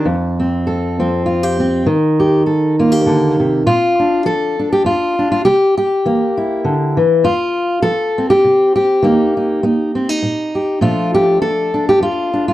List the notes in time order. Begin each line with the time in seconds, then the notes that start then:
0.05 F2
0.40 C4
0.67 A4
0.99 F3 C4
1.26 F4
1.43 G4
1.60 C4
1.86 D#3
2.20 G4
2.46 A4
2.79 A#3 F4
2.92 G4
3.06 D3
3.40 C3
3.66 A#2 F4
3.99 D4
4.25 F3 A4
4.59 D4
4.72 G4
4.84 F2 F4
5.19 D4
5.32 F4
5.45 C3 G4
5.78 G4
6.05 E3 A#3
6.37 E4
6.64 D3
6.97 E3
7.24 F2 F4
7.82 F3 A4
8.18 C4
8.30 G4
8.44 C3
8.76 G4
9.03 D#3 A#3 D#4
9.37 D#4
9.63 A#3 D#4
9.95 C4
10.09 D#4
10.22 A#2
10.55 G4
10.81 A#2 F3 A3 D4 F4
11.14 G4
11.42 F3 A4
11.74 D4
11.89 G4
12.00 F2 F4
12.33 D4
12.48 F4